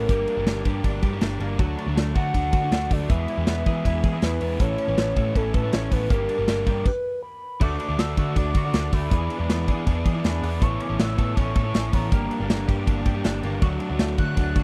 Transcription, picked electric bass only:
0.09 G1
0.37 G1
0.46 G1
0.65 G2
0.84 G1
1.02 G2
1.21 G1
1.40 G1
1.59 D2
1.86 D2
1.96 D2
2.16 D3
2.34 D2
2.53 D3
2.71 D2
2.91 D2
3.09 E2
3.37 E2
3.47 E2
3.66 E3
3.85 E2
4.04 E3
4.22 E2
4.41 E2
4.60 A1
4.88 A1
4.97 A1
5.16 A2
5.35 A1
5.54 A2
5.73 A1
5.91 A1
6.10 G1
6.39 G1
6.48 G1
6.67 G2
7.61 D2
7.89 D2
7.98 D2
8.17 D3
8.36 D2
8.55 D3
8.73 D2
8.93 D2
9.11 E2
9.40 E2
9.49 E2
9.68 E3
9.87 E2
10.06 E3
10.24 E2
10.43 E2
10.62 A1
10.90 A1
10.99 A1
11.19 A2
11.37 A1
11.55 A2
11.74 A1
11.93 A1
12.12 G1
12.40 G1
12.50 G1
12.69 G2
12.87 G1
13.06 G2
13.24 G1
13.43 G1
13.62 D2
13.90 D2
13.99 D2
14.18 D3
14.37 D2
14.56 D3

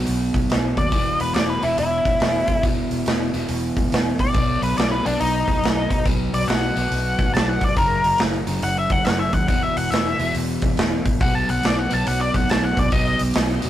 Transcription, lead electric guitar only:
0.78 D5
1.21 B4
1.35 D5
1.50 B4
1.63 E4
1.79 E4
4.20 D5
4.63 B4
4.78 D5
4.91 B4
5.05 D4
5.20 D#4
6.34 D5
6.48 F#5
7.34 A5
7.49 F#5
7.64 D5
7.77 A#4
8.64 F#5
8.79 E5
8.92 F#5
9.06 F#5
9.20 E5
9.34 F#5
9.48 F#5
9.63 E5
9.78 F#5
9.90 E5
11.22 F#5
11.35 A5
11.50 F#5
11.65 D5
11.79 F#5
11.94 A5
12.08 F#5
12.21 D5
12.36 F#5
12.50 A5
12.65 F#5
12.79 D5
12.93 D#5

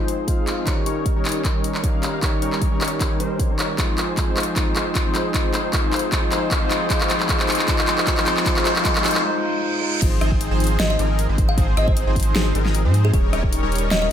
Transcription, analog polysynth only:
Already playing: F3 C4 D#4 G#4 C5
0.28 F3 C4 D#4 G#4 F5
0.58 F3 C4 D#4 G#4 F5
0.67 G3 C#4 D#4 A#4 C#5
0.86 G3 C#4 D#4 A#4 C#5
1.16 G3 C#4 D#4 A#4 C#5
1.45 G3 C#4 D#4 A#4 C#5
1.84 G3 C#4 D#4 A#4 F5
2.14 G3 C#4 D#4 A#4 F5
2.23 G3 C#4 D#4 A#4 C#5
2.42 G3 C#4 D#4 A#4 C#5
2.72 G3 C#4 D#4 A#4 C#5
3.00 G3 C#4 D#4 A#4 C#5
3.20 G3 C#4 D#4 A#4 C5
3.50 G3 C#4 D#4 A#4 C#5
3.78 F3 C4 D#4 G#4 C5
3.98 F3 C4 D#4 G#4 C5
4.28 F3 C4 D#4 G#4 C5
4.56 F3 C4 D#4 G#4 C5
4.76 F3 C4 D#4 G#4 C5
5.06 F3 C4 D#4 G#4 C5
5.34 F3 C4 D#4 G#4 C5
5.54 F3 C4 D#4 G#4 C5
5.84 F3 C4 D#4 G#4 C5
6.12 F3 C4 D#4 G#4 C5
6.32 F3 C4 D#4 G#4 C5
6.62 F3 C4 D#4 G#4 C5
6.90 F3 C4 D#4 G#4 C5
7.10 F3 C4 D#4 G#4 C5
7.29 F3 C4 D#4 G#4 C5
7.48 F3 C4 D#4 G#4 C5
7.68 F3 C4 D#4 G#4 C5
7.88 F3 C4 D#4 G#4 C5
8.07 F3 C4 D#4 G#4 C5
8.27 F3 C4 D#4 G#4 C5
8.46 F3 C4 D#4 G#4 C5
8.65 F3 C4 D#4 G#4 C5
8.85 F3 C4 D#4 G#4 C5
9.04 F3 C4 D#4 G#4 C5
10.02 F3 C4 D#4 G#4 C5
10.21 F3 C4 D#4 G#4 C5
10.51 F3 C4 D#4 G#4 C5
10.80 F3 C4 D#4 G#4 C5
10.99 F3 C4 D#4 G#4 A#4
11.29 F3 C4 D#4 G#4 C5
11.58 F3 C4 D#4 G#4 C5
11.77 F3 C4 D#4 G#4 C5
12.07 F3 C4 D#4 G#4 C5
12.36 F3 C4 D#4 G#4 C5
12.55 F3 C4 D#4 G#4 A#4
12.85 F3 C4 D#4 G#4 C5
13.13 G3 C#4 D#4 A#4 C#5
13.33 G3 C#4 D#4 A#4 C#5
13.63 G3 C#4 D#4 A#4 C#5
13.91 G3 C#4 D#4 A#4 C#5

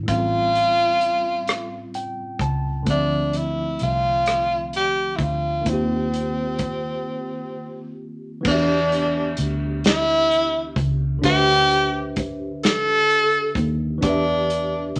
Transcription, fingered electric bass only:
0.08 A1
2.40 C#2
2.87 D2
3.81 C2
5.19 D2
5.66 D#2
8.46 E2
9.38 D2
10.76 C#2
11.24 D2
13.56 D#2
14.03 E2
14.96 D2

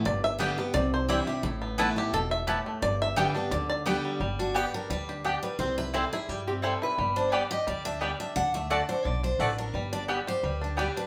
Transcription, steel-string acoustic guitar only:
0.05 G2
0.39 D3 G3 B3 G4
0.58 B3 G4
0.74 C3
1.08 E3 G3 D4 E4
1.27 D4 E4
1.43 A2
1.78 E3 A3 B3 E4
1.96 B3 E4
2.14 B2
2.48 A2
2.82 G2
3.16 D3 G3 B3 G4
3.35 B3 G4
3.52 D3
3.86 D3 G3 B3 G4
4.40 F#4
4.56 G4
4.74 A#4
4.90 B4
5.09 D4
5.24 G4
5.43 B4
5.59 C5
5.78 B4
5.94 A4
6.13 G#4
6.29 G4
7.16 C5
7.32 D5
7.51 D#5
7.68 D5
7.85 E5
8.02 D5
8.20 E5
8.36 F#5
8.54 E5
8.71 D5
8.89 C5
9.05 D5
9.24 C5
9.40 B4
9.58 A#4
9.74 B4
9.93 D5
10.28 C5
10.45 B4
10.64 D4
10.79 G4
10.97 B4

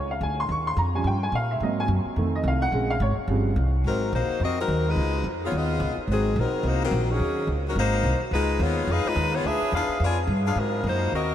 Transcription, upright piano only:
0.11 F5
0.23 G#5
0.40 C6
0.52 C#6
0.67 C6
0.78 A#5
0.95 F3 G3 C#4 G#5
1.07 G5
1.23 G#5
1.35 F5
1.51 E5
1.62 F#3 A#3 C4 D#5
1.80 G#5
2.18 D#3 A3 C4
2.35 D#5
2.48 F5
2.62 F#5
2.73 C#3 G#3 C4
2.90 F5
3.02 C#5
3.29 C#3 F3 G3 C4

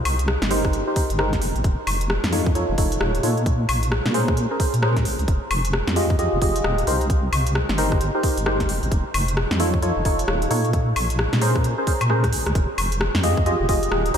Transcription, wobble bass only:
0.05 C2
0.42 G1
1.10 G1
1.42 F1
1.56 A1
1.64 F1
1.87 F1
2.24 F2
2.69 F1
2.78 F1
3.01 D#1
3.23 A#2
3.69 A#1
4.06 A#2
4.74 A#2
5.05 A#1
5.19 C#2
5.28 F1
5.51 F1
5.87 F2
6.33 F1
6.42 F1
6.64 D#1
6.87 C2
7.33 C2
7.69 G1
8.37 G1
8.69 F1
8.83 A1
8.92 F1
9.14 F1
9.51 F2
9.96 F1
10.05 F1
10.28 D#1
10.51 A#2
10.96 A#1
11.33 A#2
12.01 A#2
12.33 A#1
12.47 C#2
12.55 F1
12.78 F1
13.15 F2
13.60 F1
13.69 F1
13.92 D#1

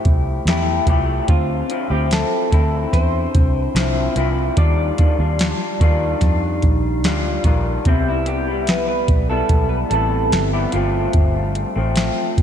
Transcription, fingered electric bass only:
0.06 C2
0.45 E2
0.87 C2
1.28 D2
1.90 D2
2.52 D2
2.93 E2
3.35 C2
3.75 C2
4.16 C2
4.57 D#2
5.19 D#2
5.80 D#2
6.21 F2
6.63 A#1
7.04 D2
7.44 A#1
7.86 C2
9.08 B1
9.50 B1
9.91 A1
10.32 G1
10.73 G1
11.14 G1
11.76 A1
12.38 G1

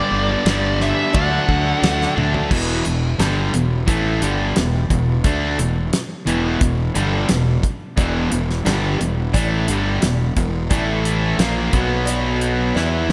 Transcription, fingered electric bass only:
0.11 G1
0.45 G1
1.15 D2
1.48 D2
1.82 D2
2.17 D2
2.51 E1
2.86 E1
3.19 G1
3.54 E1
3.88 A1
4.22 G1
4.57 E1
4.90 E1
5.24 D2
5.59 E1
6.27 E1
6.61 E1
6.96 G1
7.29 E1
7.98 E1
8.32 E1
8.66 G1
9.01 E1
9.34 A1
9.68 G1
10.03 E1
10.37 E1
10.71 A1
11.38 A#1
11.73 B1
12.76 E2
13.09 E1

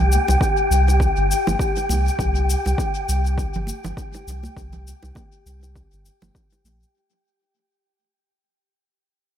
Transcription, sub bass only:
Already playing: C2
0.29 C2
0.71 C2
1.17 G1
1.47 G1
1.89 C2
2.19 C2
2.66 C2
3.08 C2
3.55 G1
3.85 G1
4.27 C2
4.57 C2
5.03 C2
5.46 C2
5.93 G1
6.22 G1
6.64 A#1

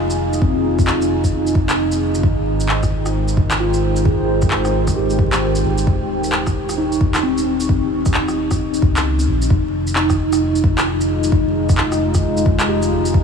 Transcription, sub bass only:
Already playing: F1
0.42 F1
2.15 G1
2.23 G#1
4.05 G#1
5.64 G#1
5.87 D#1
7.69 D#1
8.82 C#2
9.28 A#1
9.50 F1
11.32 F1
12.91 F1
13.14 F1

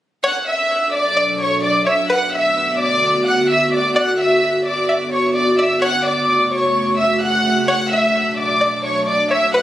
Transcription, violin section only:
0.24 F#5 F#6
0.47 E5 E6
0.93 D5 D6
1.40 C#5 C#6
1.63 D5 D6
1.87 E5 E6
2.10 F#5 F#6
2.33 E5 E6
2.79 D5 D6
3.26 F#5 F#6
3.50 E5 E6
3.73 D5 D6
3.96 F#5 F#6
4.19 E5 E6
4.66 D5 D6
5.12 C#5 C#6
5.35 D5 D6
5.59 E5 E6
5.82 F#5 F#6
6.05 D5 D6
6.52 C#5 C#6
6.98 E5 E6
7.22 F#5 F#6
7.68 F#5 F#6
7.91 E5 E6
8.38 D5 D6
8.84 C#5 C#6
9.08 D5 D6
9.31 E5 E6
9.54 F#5 F#6

